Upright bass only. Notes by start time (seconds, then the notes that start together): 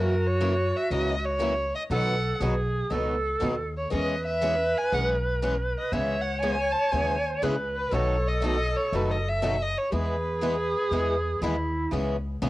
Already playing: F#2
0.90 C#2
1.90 B1
2.40 B1
2.91 C#2
3.42 D#2
3.92 E2
4.92 B1
5.92 C#2
6.92 D#2
7.42 C#2
7.92 B1
8.92 F#1
9.93 E2
10.91 E2
11.41 D#2
11.92 C#2
12.42 B1